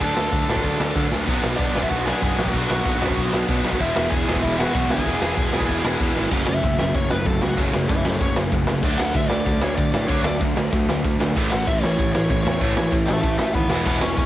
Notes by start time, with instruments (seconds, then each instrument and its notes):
Already playing: lead electric guitar A5
0.00 picked electric bass D2, distorted electric guitar D3 F#3 A3 D4, lead electric guitar A4, kick, crash
0.17 picked electric bass D2, snare
0.33 picked electric bass D2, kick, crash
0.49 picked electric bass A2, distorted electric guitar D3 A3 D4, snare
0.56 kick
0.64 picked electric bass D2, kick, crash
0.80 picked electric bass D2, distorted electric guitar D3 F#3 A3 D4, snare
0.95 distorted electric guitar D3 F#3 A3 D4, picked electric bass D3, kick, snare
1.12 picked electric bass D2, snare
1.27 picked electric bass B1, distorted electric guitar B2 F#3 B3 D4 F#4, kick, crash
1.43 picked electric bass B1, snare
1.56 picked electric bass B1, lead electric guitar D4 D5, kick, crash
1.73 picked electric bass B1, distorted electric guitar F#3 B3, snare
1.77 distorted electric guitar B2
1.82 lead electric guitar E4 E5, kick
1.89 picked electric bass B1, lead electric guitar F#4 F#5, kick, crash
2.04 distorted electric guitar D4 F#4, lead electric guitar G#4 G#5, snare
2.09 distorted electric guitar B2 F#3 B3
2.22 picked electric bass F#1, distorted electric guitar B2 F#3 B3 D4 F#4, kick, crash
2.37 picked electric bass A1, lead electric guitar F#4 F#5, snare
2.46 kick
2.53 picked electric bass B1, distorted electric guitar B2 F#3 B3 D4 F#4, kick, crash
2.70 picked electric bass B1, snare
2.85 picked electric bass B1, kick, crash
3.00 picked electric bass F#2, distorted electric guitar B2 F#3 B3, snare
3.10 kick
3.17 picked electric bass B1, kick, crash
3.32 picked electric bass B1, distorted electric guitar B2 F#3 B3 D4 F#4, snare
3.48 distorted electric guitar B2 F#3 B3 D4 F#4, picked electric bass B2, kick, crash
3.65 picked electric bass B1, snare
3.72 kick
3.79 picked electric bass E1, distorted electric guitar E2 B2 E3 G#3 B3 E4 G#4, lead electric guitar E4 E5, kick, crash
3.96 picked electric bass E1, snare
4.10 picked electric bass E1, lead electric guitar G#4 G#5, kick, crash
4.24 distorted electric guitar B2 E3
4.29 picked electric bass E1, distorted electric guitar E2, snare
4.36 kick
4.42 picked electric bass E1, lead electric guitar E4 E5, kick, crash
4.57 distorted electric guitar E3 G#3 B3 E4 G#4, lead electric guitar F#4 F#5, snare
4.73 picked electric bass B1, distorted electric guitar E3 G#3 B3 E4, kick, crash
4.78 distorted electric guitar G#4
4.90 picked electric bass D2, lead electric guitar G#4 G#5, snare
4.98 kick
5.05 picked electric bass E1, distorted electric guitar E2 B2 E3 G#3 B3 E4, kick, crash
5.09 distorted electric guitar E3 G#4
5.22 picked electric bass E1, snare
5.38 picked electric bass E1, kick, crash
5.52 picked electric bass B1, distorted electric guitar E2 B2 E3, snare
5.61 kick
5.69 picked electric bass E1, kick, crash
5.84 picked electric bass E1, distorted electric guitar E3 G#3 B3 E4 G#4, snare
6.00 picked electric bass E2, distorted electric guitar E3 G#3 B3 G#4, kick, crash
6.04 distorted electric guitar E4
6.16 picked electric bass G#1, snare
6.30 picked electric bass F#1, distorted electric guitar F#2 C#3 F#3 A3 C#4, kick, crash
6.46 picked electric bass F#1, distorted electric guitar F#2 C#3 F#3 A3, lead electric guitar E5, snare
6.62 picked electric bass F#1, distorted electric guitar F#2 C#3 F#3 A3, kick, ride
6.79 picked electric bass F#1, distorted electric guitar F#2 C#3 F#3 A3, lead electric guitar E5, snare
6.94 picked electric bass F#1, distorted electric guitar F#2 C#3 F#3 A3, lead electric guitar C#5, kick, ride
7.10 picked electric bass F#1, distorted electric guitar F#2 C#3 F#3 A3, lead electric guitar B4, snare
7.26 picked electric bass F#1, distorted electric guitar F#2 C#3 F#3 A3, lead electric guitar A4, kick, ride
7.41 picked electric bass C#2, distorted electric guitar F#2 C#3 F#3 A3, lead electric guitar F#4, snare
7.56 picked electric bass F#1, distorted electric guitar F#2 C#3 F#3 A3 C#4, kick, ride
7.72 picked electric bass F#1, distorted electric guitar F#2 C#3 F#3 A3, snare
7.88 picked electric bass F#1, distorted electric guitar F#2 C#3 F#3 A3, lead electric guitar B4 E5, kick, ride
8.05 picked electric bass F#1, distorted electric guitar F#2 C#3 F#3 A3, lead electric guitar A4 C#5, snare
8.20 picked electric bass F#1, distorted electric guitar F#2 C#3 F#3 A3, lead electric guitar C#5, kick, ride
8.36 picked electric bass F#1, distorted electric guitar F#2 C#3 F#3 A3, snare
8.52 picked electric bass F#1, distorted electric guitar F#2 C#3 F#3 A3, kick, ride
8.67 picked electric bass F#1, distorted electric guitar F#2 C#3 F#3 A3, snare
8.83 picked electric bass D2, distorted electric guitar D3 F#3 A3 D4, kick, crash
8.98 picked electric bass D2, distorted electric guitar D3 A3, lead electric guitar F#5, snare
9.14 picked electric bass D2, distorted electric guitar D3 A3, lead electric guitar E5, kick, ride
9.29 picked electric bass D2, distorted electric guitar D3 A3, lead electric guitar D5, snare
9.45 picked electric bass D2, distorted electric guitar D3 A3, kick, ride
9.61 picked electric bass D2, distorted electric guitar D3 A3, lead electric guitar C#5, snare
9.76 picked electric bass D2, distorted electric guitar D3 A3, lead electric guitar D5, kick, ride
9.92 picked electric bass A2, distorted electric guitar D3 A3, lead electric guitar D5, snare
10.08 picked electric bass D2, distorted electric guitar D3 F#3 A3 D4, lead electric guitar C#5, kick, ride
10.23 picked electric bass D2, distorted electric guitar D3 A3, lead electric guitar D5, snare
10.41 picked electric bass D2, distorted electric guitar D3 A3, kick, ride
10.57 picked electric bass D2, distorted electric guitar D3 A3, snare
10.72 picked electric bass D2, distorted electric guitar D3 A3, kick, ride
10.89 picked electric bass D2, distorted electric guitar D3 A3, snare
11.04 picked electric bass D2, distorted electric guitar D3 A3, kick, ride
11.20 picked electric bass D2, distorted electric guitar D3 A3, snare
11.36 picked electric bass A1, distorted electric guitar A2 E3 A3 C#4 E4, kick, crash
11.51 picked electric bass A1, distorted electric guitar A2 E3, lead electric guitar F#5, snare
11.67 picked electric bass A1, distorted electric guitar A2 E3, lead electric guitar E5, kick, ride
11.82 picked electric bass A1, distorted electric guitar A2 E3, lead electric guitar C#5, snare
11.98 picked electric bass A1, distorted electric guitar A2 E3, kick, ride
12.13 picked electric bass A1, distorted electric guitar A2 E3, lead electric guitar C#5, snare
12.30 picked electric bass A1, distorted electric guitar A2 E3, lead electric guitar C#5, kick, ride
12.43 picked electric bass E2, distorted electric guitar A2 E3, lead electric guitar C#5, snare
12.61 picked electric bass A1, distorted electric guitar A2 E3 A3 C#4 E4, lead electric guitar C#5, kick, ride
12.76 picked electric bass A1, distorted electric guitar A2 E3, lead electric guitar C#5, snare
12.92 picked electric bass A1, distorted electric guitar A2 E3, kick, ride
13.06 picked electric bass A1, distorted electric guitar A2 E3, lead electric guitar E5 A5, snare
13.21 picked electric bass A1, distorted electric guitar A2 E3, lead electric guitar E5 A5, kick, ride
13.38 picked electric bass A1, distorted electric guitar A2 E3, lead electric guitar E5 A5, snare
13.53 picked electric bass D#2, distorted electric guitar A2 E3, lead electric guitar F#5 B5, kick, ride
13.70 picked electric bass E1, distorted electric guitar E2 B2 E3 G#3 B3 E4, lead electric guitar F#5 B5, snare
13.86 picked electric bass E1, distorted electric guitar E2 B2 E3 G#3 B3, lead electric guitar F#5 B5, kick, crash
14.01 picked electric bass E1, distorted electric guitar E2 B2 E3 G#3, lead electric guitar G#5 C#6, snare
14.17 picked electric bass E1, distorted electric guitar E2 B2 E3 G#3, lead electric guitar G#5 C#6, kick, ride